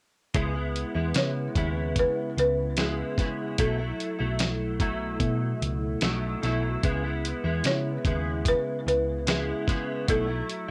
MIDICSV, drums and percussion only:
0, 0, Header, 1, 2, 480
1, 0, Start_track
1, 0, Key_signature, 4, "minor"
1, 0, Tempo, 811359
1, 203, Time_signature, 4, 2, 24, 8
1, 6334, End_track
2, 0, Start_track
2, 0, Title_t, "Drums"
2, 203, Note_on_c, 9, 42, 84
2, 204, Note_on_c, 9, 36, 91
2, 262, Note_off_c, 9, 42, 0
2, 263, Note_off_c, 9, 36, 0
2, 449, Note_on_c, 9, 42, 62
2, 508, Note_off_c, 9, 42, 0
2, 677, Note_on_c, 9, 42, 86
2, 685, Note_on_c, 9, 38, 96
2, 737, Note_off_c, 9, 42, 0
2, 744, Note_off_c, 9, 38, 0
2, 919, Note_on_c, 9, 36, 77
2, 921, Note_on_c, 9, 42, 64
2, 978, Note_off_c, 9, 36, 0
2, 980, Note_off_c, 9, 42, 0
2, 1158, Note_on_c, 9, 36, 75
2, 1159, Note_on_c, 9, 42, 83
2, 1217, Note_off_c, 9, 36, 0
2, 1218, Note_off_c, 9, 42, 0
2, 1410, Note_on_c, 9, 42, 62
2, 1469, Note_off_c, 9, 42, 0
2, 1637, Note_on_c, 9, 42, 75
2, 1643, Note_on_c, 9, 38, 108
2, 1696, Note_off_c, 9, 42, 0
2, 1703, Note_off_c, 9, 38, 0
2, 1881, Note_on_c, 9, 36, 87
2, 1884, Note_on_c, 9, 38, 35
2, 1887, Note_on_c, 9, 42, 62
2, 1940, Note_off_c, 9, 36, 0
2, 1943, Note_off_c, 9, 38, 0
2, 1946, Note_off_c, 9, 42, 0
2, 2120, Note_on_c, 9, 42, 99
2, 2122, Note_on_c, 9, 36, 83
2, 2179, Note_off_c, 9, 42, 0
2, 2181, Note_off_c, 9, 36, 0
2, 2368, Note_on_c, 9, 42, 62
2, 2427, Note_off_c, 9, 42, 0
2, 2597, Note_on_c, 9, 42, 88
2, 2605, Note_on_c, 9, 38, 96
2, 2656, Note_off_c, 9, 42, 0
2, 2664, Note_off_c, 9, 38, 0
2, 2839, Note_on_c, 9, 36, 84
2, 2841, Note_on_c, 9, 42, 70
2, 2898, Note_off_c, 9, 36, 0
2, 2900, Note_off_c, 9, 42, 0
2, 3077, Note_on_c, 9, 36, 76
2, 3078, Note_on_c, 9, 42, 82
2, 3136, Note_off_c, 9, 36, 0
2, 3137, Note_off_c, 9, 42, 0
2, 3327, Note_on_c, 9, 42, 61
2, 3386, Note_off_c, 9, 42, 0
2, 3556, Note_on_c, 9, 42, 83
2, 3562, Note_on_c, 9, 38, 107
2, 3615, Note_off_c, 9, 42, 0
2, 3621, Note_off_c, 9, 38, 0
2, 3803, Note_on_c, 9, 38, 34
2, 3806, Note_on_c, 9, 42, 69
2, 3862, Note_off_c, 9, 38, 0
2, 3865, Note_off_c, 9, 42, 0
2, 4043, Note_on_c, 9, 42, 91
2, 4044, Note_on_c, 9, 36, 97
2, 4102, Note_off_c, 9, 42, 0
2, 4103, Note_off_c, 9, 36, 0
2, 4289, Note_on_c, 9, 42, 69
2, 4348, Note_off_c, 9, 42, 0
2, 4520, Note_on_c, 9, 42, 86
2, 4528, Note_on_c, 9, 38, 91
2, 4579, Note_off_c, 9, 42, 0
2, 4587, Note_off_c, 9, 38, 0
2, 4761, Note_on_c, 9, 36, 85
2, 4765, Note_on_c, 9, 42, 71
2, 4820, Note_off_c, 9, 36, 0
2, 4824, Note_off_c, 9, 42, 0
2, 5000, Note_on_c, 9, 36, 81
2, 5003, Note_on_c, 9, 42, 95
2, 5059, Note_off_c, 9, 36, 0
2, 5062, Note_off_c, 9, 42, 0
2, 5254, Note_on_c, 9, 42, 65
2, 5313, Note_off_c, 9, 42, 0
2, 5484, Note_on_c, 9, 42, 80
2, 5491, Note_on_c, 9, 38, 114
2, 5544, Note_off_c, 9, 42, 0
2, 5550, Note_off_c, 9, 38, 0
2, 5724, Note_on_c, 9, 36, 83
2, 5729, Note_on_c, 9, 38, 34
2, 5732, Note_on_c, 9, 42, 70
2, 5784, Note_off_c, 9, 36, 0
2, 5788, Note_off_c, 9, 38, 0
2, 5791, Note_off_c, 9, 42, 0
2, 5966, Note_on_c, 9, 36, 88
2, 5966, Note_on_c, 9, 42, 95
2, 6025, Note_off_c, 9, 36, 0
2, 6025, Note_off_c, 9, 42, 0
2, 6209, Note_on_c, 9, 42, 62
2, 6269, Note_off_c, 9, 42, 0
2, 6334, End_track
0, 0, End_of_file